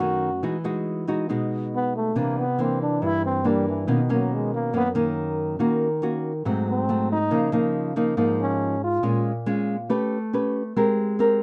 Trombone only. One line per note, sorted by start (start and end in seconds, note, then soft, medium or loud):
0.00 0.44 F#4 loud
1.75 1.94 B3 medium
1.96 2.19 A3 medium
2.18 2.40 A#3 medium
2.39 2.63 B3 medium
2.61 2.81 C4 medium
2.83 3.06 D4 medium
3.04 3.24 E4 loud
3.25 3.49 C4 medium
3.48 3.68 G3 medium
3.68 3.93 E3 medium
3.91 4.11 D#3 medium
4.12 4.36 F#3 medium
4.34 4.54 G#3 medium
4.55 4.73 A#3 medium
4.77 4.89 B3 loud
6.69 7.08 C4 medium
7.12 7.51 D#4 loud
8.41 8.80 C#4 medium
8.84 9.23 F4 medium